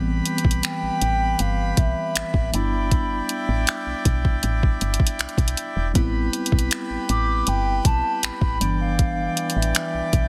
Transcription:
0.00 0.22 A1 loud
0.00 2.54 E3 medium
0.00 2.49 G3 medium
0.00 2.49 B3 medium
0.00 2.50 C4 medium
0.00 2.51 G4 medium
0.00 2.51 B4 medium
0.00 2.51 B5 medium
0.26 closed hi-hat medium
0.38 closed hi-hat medium
0.45 0.62 B1 medium
0.45 kick medium
0.51 closed hi-hat medium
0.63 1.42 G5 medium
0.63 finger snap loud
0.63 closed hi-hat medium
0.83 0.90 A1 soft
1.02 1.36 A1 medium
1.02 closed hi-hat medium
1.39 1.74 G1 medium
1.39 1.78 F5 medium
1.39 closed hi-hat medium
1.77 1.94 B1 medium
1.77 2.56 E5 loud
1.77 kick loud
1.77 closed hi-hat medium
2.16 2.23 A1 soft
2.16 finger snap loud
2.16 closed hi-hat medium
2.34 2.51 A1 medium
2.34 kick loud
2.52 3.21 G1 loud
2.52 5.53 G3 medium
2.52 5.53 B3 medium
2.52 5.54 D4 medium
2.52 5.92 E4 medium
2.52 5.92 D5 medium
2.52 5.92 G5 medium
2.52 3.68 B5 loud
2.52 closed hi-hat medium
2.56 5.55 E4 medium
2.91 kick loud
2.91 closed hi-hat medium
3.29 closed hi-hat medium
3.49 3.66 A1 medium
3.67 finger snap loud
3.67 closed hi-hat medium
3.87 3.94 B1 soft
4.05 4.39 B1 medium
4.05 kick medium
4.05 closed hi-hat medium
4.25 kick medium
4.43 4.77 A1 loud
4.43 closed hi-hat medium
4.63 kick medium
4.81 4.98 G1 medium
4.81 closed hi-hat soft
4.94 closed hi-hat medium
5.00 kick medium
5.07 closed hi-hat medium
5.19 5.27 B1 soft
5.19 finger snap loud
5.19 closed hi-hat soft
5.29 closed hi-hat soft
5.38 5.55 B1 medium
5.38 kick loud
5.38 closed hi-hat medium
5.48 closed hi-hat medium
5.57 closed hi-hat medium
5.76 5.93 E1 medium
5.94 6.29 A1 loud
5.94 8.56 G3 medium
5.94 8.57 B3 medium
5.94 8.58 C4 medium
5.94 8.58 G4 medium
5.94 8.58 B4 medium
5.94 8.58 B5 medium
5.94 kick loud
5.94 closed hi-hat medium
5.98 8.58 E4 medium
6.33 closed hi-hat medium
6.46 closed hi-hat medium
6.52 6.69 B1 medium
6.52 kick medium
6.59 closed hi-hat medium
6.71 finger snap loud
6.71 closed hi-hat medium
6.90 6.98 A1 soft
7.09 7.43 A1 medium
7.09 7.50 D6 loud
7.09 closed hi-hat medium
7.47 7.81 G1 medium
7.47 7.86 G5 loud
7.47 closed hi-hat medium
7.85 8.02 B1 medium
7.85 8.21 A5 loud
7.85 kick loud
7.85 closed hi-hat medium
8.23 8.31 A1 soft
8.23 8.77 B5 loud
8.23 finger snap loud
8.23 closed hi-hat medium
8.41 8.59 A1 medium
8.41 kick loud
8.60 9.29 G1 loud
8.60 10.28 E3 medium
8.60 10.28 G3 medium
8.60 10.28 B3 medium
8.60 10.28 D4 medium
8.60 10.28 D5 medium
8.60 10.28 G5 medium
8.60 closed hi-hat medium
8.64 10.28 E3 medium
8.81 9.59 F5 loud
8.99 kick loud
8.99 closed hi-hat medium
9.37 closed hi-hat medium
9.50 closed hi-hat medium
9.56 9.73 A1 medium
9.56 9.76 E5 medium
9.62 closed hi-hat medium
9.75 10.28 E5 medium
9.75 finger snap loud
9.75 closed hi-hat medium
9.94 10.02 B1 soft
10.13 10.28 B1 medium
10.13 kick medium
10.13 closed hi-hat medium

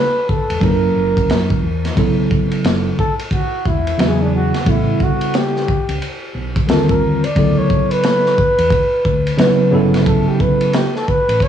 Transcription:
0.00 0.31 B4 medium
0.29 0.65 A4 medium
0.29 kick medium
0.50 0.59 E1 loud
0.50 ride medium
0.60 0.87 F#1 medium
0.60 1.64 F#3 medium
0.60 1.64 A#3 medium
0.60 1.65 C#4 medium
0.60 1.65 E4 medium
0.60 1.64 A#4 medium
0.60 kick medium
0.60 ride medium
0.64 0.71 A4 medium
0.71 1.69 A#4 medium
0.96 1.12 F#1 loud
1.17 1.31 C#2 medium
1.17 kick medium
1.17 ride medium
1.29 1.55 F#2 medium
1.29 snare loud
1.29 hi-hat pedal medium
1.29 ride medium
1.50 kick medium
1.63 1.89 E2 medium
1.85 snare soft
1.85 ride medium
1.95 2.23 B1 medium
1.95 2.99 C#3 medium
1.95 2.99 F#3 medium
1.95 3.00 B3 medium
1.95 3.00 E4 medium
1.95 3.00 A4 medium
1.95 kick loud
1.95 ride medium
2.31 kick loud
2.51 ride medium
2.64 2.90 F#1 loud
2.64 snare loud
2.64 hi-hat pedal soft
2.64 ride medium
2.99 3.14 A4 loud
2.99 kick medium
3.19 ride medium
3.31 3.68 F#4 medium
3.31 kick medium
3.31 ride medium
3.65 3.92 E1 medium
3.65 4.23 E4 medium
3.65 kick medium
3.87 ride medium
3.98 4.51 E2 medium
3.98 4.54 C#3 medium
3.98 4.54 F#3 medium
3.98 4.55 B3 medium
3.98 4.55 E4 medium
3.98 snare loud
3.98 hi-hat pedal soft
3.98 ride medium
4.02 4.09 F#4 medium
4.08 4.59 G#4 medium
4.22 4.34 D4 medium
4.35 4.71 F#4 medium
4.54 snare soft
4.54 ride medium
4.65 4.92 A1 medium
4.65 5.68 C#3 medium
4.65 5.68 G3 medium
4.65 5.69 B3 medium
4.65 5.69 E4 medium
4.65 5.70 A4 medium
4.65 kick loud
4.65 ride medium
4.70 5.05 E4 medium
5.00 5.38 F#4 loud
5.00 kick medium
5.21 ride medium
5.34 6.03 G4 medium
5.34 snare loud
5.34 hi-hat pedal soft
5.34 ride medium
5.56 snare soft
5.68 kick loud
5.89 5.98 C#2 medium
5.89 ride medium
6.02 ride medium
6.35 6.61 B1 medium
6.56 kick medium
6.56 ride medium
6.67 7.20 D#2 medium
6.67 7.23 D3 medium
6.67 7.24 G3 medium
6.67 7.24 C4 medium
6.67 7.25 F4 medium
6.67 6.93 A4 medium
6.67 7.25 A#4 medium
6.67 snare loud
6.67 hi-hat pedal medium
6.67 ride medium
6.89 7.26 A#4 medium
6.89 kick loud
7.24 7.60 D5 loud
7.24 ride medium
7.35 7.62 D2 medium
7.35 8.38 C#3 medium
7.35 8.39 F#3 medium
7.35 8.39 B3 medium
7.35 8.40 E4 medium
7.35 8.40 A4 medium
7.35 kick loud
7.35 ride medium
7.58 7.93 C#5 loud
7.70 kick loud
7.91 9.60 B4 loud
7.91 ride medium
8.03 snare loud
8.03 hi-hat pedal medium
8.03 ride medium
8.26 snare soft
8.38 kick medium
8.58 8.68 E2 loud
8.58 ride medium
8.70 kick loud
8.70 ride medium
9.05 9.31 D2 medium
9.05 kick medium
9.27 ride medium
9.37 9.70 C#3 medium
9.37 9.71 F#3 medium
9.37 9.72 B3 medium
9.37 9.73 E4 medium
9.37 9.74 B4 loud
9.37 snare loud
9.37 hi-hat pedal medium
9.37 ride medium
9.71 10.24 G1 loud
9.71 10.81 C#3 medium
9.71 10.82 F#3 medium
9.71 10.82 B3 medium
9.71 10.83 E4 medium
9.71 10.83 A4 medium
9.94 snare soft
9.94 ride medium
10.06 10.30 A4 medium
10.06 kick loud
10.06 ride medium
10.29 10.42 G4 medium
10.40 10.74 B4 medium
10.40 kick loud
10.61 ride medium
10.73 10.94 G4 medium
10.73 snare loud
10.73 hi-hat pedal soft
10.73 ride medium
10.96 11.10 A4 medium
10.96 snare soft
11.08 11.45 B4 loud
11.08 kick medium
11.28 11.38 A1 medium
11.28 ride medium
11.40 11.48 C#5 loud
11.40 kick medium
11.40 ride medium

